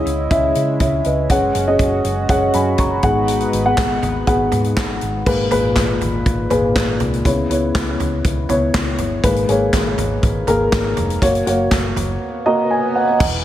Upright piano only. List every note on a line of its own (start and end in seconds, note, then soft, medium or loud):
0.00 1.32 C#3 medium
0.00 0.31 C#4 medium
0.00 0.31 E4 medium
0.00 1.06 D#5 medium
0.00 1.31 F#5 medium
0.31 1.07 C#4 medium
0.31 1.07 E4 medium
0.31 0.79 E5 medium
0.81 1.04 C#5 medium
0.81 1.04 E5 medium
1.06 1.53 B4 soft
1.06 1.53 D#5 medium
1.31 1.59 C#4 medium
1.31 1.59 G#4 medium
1.31 1.59 F#5 medium
1.68 2.15 C#4 medium
1.68 2.15 G#4 medium
1.68 2.15 D#5 medium
2.29 3.04 C#4 medium
2.29 3.02 G#4 medium
2.29 3.02 F#5 medium
2.54 2.78 G#5 medium
2.54 2.78 B5 medium
2.79 3.26 A#5 soft
2.79 3.26 C#6 medium
3.03 3.74 G#2 medium
3.03 3.53 B3 medium
3.03 3.53 G#4 medium
3.03 3.53 F#5 medium
3.65 4.13 B3 medium
3.65 4.13 G#4 medium
3.65 4.13 F#5 medium
4.27 5.03 B3 medium
4.27 5.04 G#4 medium
4.27 5.04 F#5 medium
5.26 5.97 G#2 medium
5.26 5.46 A#3 medium
5.26 5.46 G#4 medium
5.26 5.46 B4 medium
5.51 6.28 A#2 medium
5.51 6.28 G#4 medium
5.51 6.28 B4 medium
6.50 7.08 A#2 medium
6.50 7.08 G#4 medium
6.50 7.08 B4 medium
7.25 7.96 C#3 medium
7.25 7.44 B3 medium
7.25 7.44 E4 medium
7.25 7.44 C#5 medium
7.50 8.26 B3 medium
7.50 8.26 E4 medium
7.50 8.26 C#5 medium
8.49 9.06 B3 medium
8.49 9.06 E4 medium
8.49 9.06 C#5 medium
9.24 9.94 G#2 medium
9.24 9.43 A#3 medium
9.24 9.43 G#4 medium
9.24 9.43 B4 medium
9.49 10.25 A#3 medium
9.49 10.25 G#4 medium
9.49 10.25 C#5 medium
10.48 11.05 A#3 medium
10.48 11.05 G#4 medium
10.48 11.05 A#4 medium
11.22 11.41 A#3 medium
11.22 11.41 F#4 medium
11.22 11.41 C#5 medium
11.47 12.23 A#3 medium
11.47 12.23 F#4 medium
11.47 12.23 C#5 medium
12.46 13.03 A#3 medium
12.46 13.03 F#4 medium
12.46 13.03 D#5 medium
12.46 12.69 A#5 medium
12.71 12.94 G#5 medium
12.95 13.19 F#5 medium